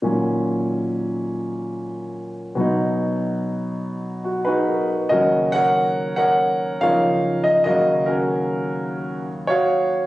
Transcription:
0.02 A#2 D#3 F#3 C#4
2.55 B2 F#3 B3
2.60 D#4
4.24 F#4
4.45 D#4 F#4 G#4 B4
4.68 A#4
4.90 B4
5.09 D#2 C#3 F#3 C#4 F#4 A#4 D#5
5.52 A#4 C#5 F#5
6.16 A#4 C#5 F#5
6.81 C#3 F3 D#4 A#4 C#5 F5
7.44 D#5
7.64 D#2 C#3 F#3 F#4 A#4 D#5 F5
8.06 C#4 F#4 A#4
9.47 F#4 C#5 F5

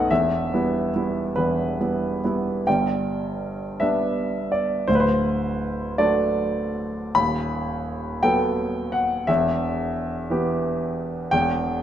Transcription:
Already playing: B0 B1 A3 B3 D#4 D#5 F#5
0.11 E1 E2 E5
0.53 G3 B3 E4
0.95 G3 B3 E4
1.36 E1 E2 B4
1.80 G3 B3 E4
2.24 G3 B3 E4
2.67 G1 G2 G5
3.80 G3 B3 D4 E5
4.52 D5
4.88 D1 D2 C5
4.95 B4
5.00 C5
5.98 F#3 A3 D4 D5
7.15 D#1 D#2 B5
8.23 F#3 B3 A4 G5
8.92 F#5
9.27 E1 E2 E5
10.30 E3 B3 G4
11.31 E1 E2 G5

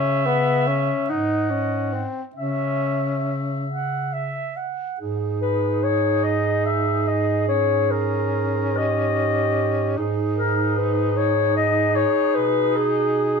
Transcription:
Already playing: C#3 C#4 E5
0.26 B3
0.67 C#4
1.09 G#2 D#4 D#5 F#5
1.51 C#4
1.93 C4
2.35 C#3 C#4 E5
3.68 F#5
4.13 E5
4.56 F#5
5.00 G#2 D#4 G#4
5.42 B4
5.84 C#5
6.24 D#5
6.66 E5
7.07 D#5
7.48 C#4 C#5
7.91 A#4
8.77 G4 D#5
9.97 G#2 D#4 G#4
10.37 A#4
10.78 B4
11.17 C#5
11.57 D#5
11.96 C#5
12.35 B2 B4
12.76 G#4

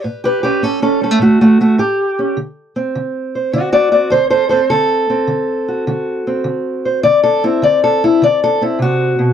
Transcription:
0.02 A2 G4 B4
0.24 G4 B4
0.43 C#4 G4 B4
0.62 A2 C#4 A4
0.82 C#4 A4
1.01 G3 C#4 A4
1.11 A3
1.19 A2 A3 F#4
1.41 A3 F#4
1.61 A3 F#4
1.78 A2 G4
2.19 C#4
2.37 D3
2.76 C4
2.95 D3
3.35 C5
3.53 D3 F#4 D5
3.72 F#4 D5
3.92 C4 F#4 D5
4.10 D3 A4 C5
4.30 A4 C5
4.49 C4 A4 C5
4.70 D3 A4
5.10 C4
5.27 D3
5.68 F#4
5.87 D3 F#4
6.27 C4
6.44 D3
6.85 C5
7.03 D3 D5
7.23 A4
7.44 C4 E4
7.62 D3 D5
7.84 A4
8.04 E4
8.22 D3 D5
8.44 A4
8.61 C4 E4
8.79 C3 F#4
9.19 B2

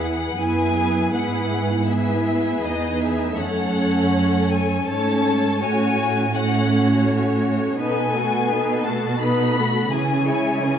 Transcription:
Already playing: E2 B3 E4 G#4 B4
0.02 F#5
0.38 F#2 B3 E4 G#4 B4 G#5
1.13 G#2 B3 E4 G#4 B4 F#5
1.86 B3 E4 G#4 B4 E5
2.63 E2 D#4 D#5
3.02 E5
3.38 F#2 A3 C#4 A4 C#5 F#5
4.51 G#5
4.87 G#2 A3 C#4 A4 C#5 A5
5.61 A2 A3 C#4 F#4 C#5 G#5
6.35 A3 C#4 F#4 C#5 F#5
7.78 B2 B3 D#4 A4 B4 G#5
8.13 A3 B3 F#4 A4
8.48 B3 D#4 A4 B4
8.83 A3 B3 F#4 A4 A5
9.19 B3 D#4 A4 B4 B5
9.55 A3 B3 F#4 A4
9.91 C#3 E3 C#4 G#4 G#5
10.26 G#3 E4 C#5
10.62 E3 C#4 G#4

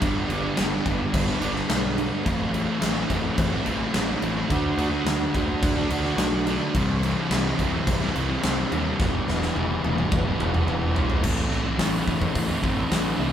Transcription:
0.00 G1 G2 D3 G3 B3 D4, kick, crash
0.29 G1 D3 G3 B3 D4, crash
0.43 G3 B3 D4
0.57 G1 G2 D3 G3 B3 D4, snare, crash
0.84 G1 D3 G3 B3 D4, kick, crash
0.99 G3 B3 D4
1.13 G1, kick, crash
1.27 G3 B3 D4
1.39 G1 D3 G3 B3 D4, crash
1.54 G3 B3 D4, snare
1.69 B1 G2 D3 G3 B3 D4, snare, crash
1.96 D3 G3 B3 D4, crash
2.24 A1 A2 E3 A3 C4 E4, kick, crash
2.53 E3 A3 C4 E4, crash
2.66 A3 C4 E4
2.80 A1 A2 E3 A3 C4 E4, snare, crash
3.09 A1 E3 A3 C4 E4, kick, crash
3.23 A3 C4 E4
3.38 A1, kick, crash
3.51 A3 C4 E4
3.64 A1 E3 A3 C4 E4, crash
3.78 A3 C4 E4
3.92 A1 A2 E3 A3 C4 E4, snare, crash
4.20 A1 E3 A3 C4 E4, crash
4.48 D2 D3 A3 D4 F#4, kick, crash
4.76 D2 D3 A3 D4 F#4, crash
4.90 A3 D4 F#4
5.05 D2 D3 A3 D4 F#4, snare, crash
5.34 D2 D3 A3 D4 F#4, kick, crash
5.48 A3 D4 F#4
5.62 D2, kick, crash
5.76 A3 D4 F#4
5.89 D2 D3 A3 D4 F#4, crash
6.04 A3 D4 F#4, snare
6.17 B1 D3 A3 D4 F#4, snare, crash
6.46 D3 A3 D4 F#4, snare, crash
6.74 C2 C3 E3 G3 C4 E4, kick, crash
7.02 E3 G3 C4 E4, crash
7.16 G3 C4 E4
7.31 C2 C3 E3 G3 C4 E4, snare, crash
7.59 C2 E3 G3 C4 E4, kick, crash
7.73 G3 C4 E4
7.87 C2, kick, crash
8.01 G3 C4 E4
8.14 C2 E3 G3 C4 E4, crash
8.29 G3 C4 E4
8.42 C2 C3 E3 G3 C4 E4, snare, crash
8.70 D#2 E3 G3 C4 E4, crash
8.98 E1 E3 G3 B3 E4, kick, snare
9.27 E1 E3 G3 B3 E4, snare
9.41 G3 B3 E4, snare
9.55 E1 E3 G3 B3 E4, high tom
9.83 E1 E3 G3 B3 E4, high tom
9.98 G3 B3 E4, mid tom
10.12 E1, kick, mid tom
10.25 G3 B3 E4
10.38 E1 E3 G3 B3 E4, mid tom
10.53 G3 B3 E4, mid tom
10.66 E1 E3 G3 B3 E4, mid tom
10.94 E3 G3 B3 E4, floor tom
11.10 floor tom
11.21 A1 A2 E3 A3 C4 E4, kick, crash
11.49 E3 A3 C4 E4, snare
11.63 A3 C4 E4
11.77 A1 A2 E3 A3 C4 E4, snare, open hi-hat
12.05 A1 E3 A3 C4 E4, kick
12.19 A3 C4 E4, kick
12.35 A1, kick, open hi-hat
12.47 A3 C4 E4
12.62 A1 E3 A3 C4 E4, kick
12.76 A3 C4 E4
12.90 A1 A2 E3 A3 C4 E4, snare, open hi-hat
13.17 C2 E3 A3 C4 E4

